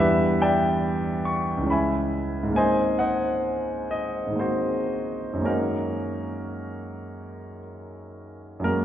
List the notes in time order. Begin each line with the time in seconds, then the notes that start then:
Already playing: E2 E3 G3 B3 D4 E5
0.00 G4 B4
0.42 D5 E5 G5
1.25 C#6
1.57 C#2 E3
1.64 G#3 C#4
1.70 E5 G#5 B5
2.43 G#2 D#3
2.49 G#3 A#3
2.55 C4 C5 D#5 G#5
2.99 C5 D#5 F#5
3.91 D#5
4.27 G#2 D#3
4.33 G#3 A#3
4.39 C4 F#4 G#4 C5
5.33 F#2 D#3
5.39 G#3 A#3
5.44 C#4 D#4 F#4 A#4
8.60 F#2 F#3 G#3
8.64 A#3 F#4 A#4